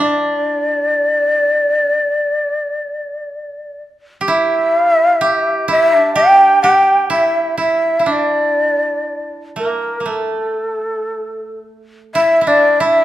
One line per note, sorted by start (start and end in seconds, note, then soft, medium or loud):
0.00 1.81 D4 medium
0.00 1.73 E4 medium
0.00 3.83 D5 medium
1.81 2.05 C#4 medium
2.05 2.29 C4 medium
2.29 2.52 B3 medium
2.52 3.77 A#3 medium
4.21 5.21 G4 medium
4.28 5.68 E4 medium
4.28 4.78 E5 loud
4.78 4.91 F5 loud
4.91 5.05 E5 loud
5.05 5.18 F5 loud
5.18 6.15 G4 medium
5.18 5.65 E5 loud
5.68 5.97 E4 medium
5.68 6.14 E5 medium
5.97 7.09 D4 medium
6.15 6.63 G4 medium
6.15 6.59 G5 loud
6.62 8.68 G4 medium
6.62 7.07 G5 medium
7.10 7.57 E4 medium
7.10 7.56 E5 medium
7.58 7.99 E4 medium
7.58 8.14 E5 medium
7.99 10.26 E4 soft
8.06 10.49 D4 medium
8.12 9.31 D5 medium
9.56 10.00 A#3 medium
9.56 10.11 A#4 medium
10.00 10.12 A#3 soft
10.06 12.94 A3 soft
10.06 11.66 A4 medium
12.14 12.41 E4 medium
12.14 12.49 E5 medium
12.41 12.80 E4 medium
12.47 13.04 D4 medium
12.47 12.81 D5 medium
12.80 13.04 E4 medium
12.80 13.04 E5 medium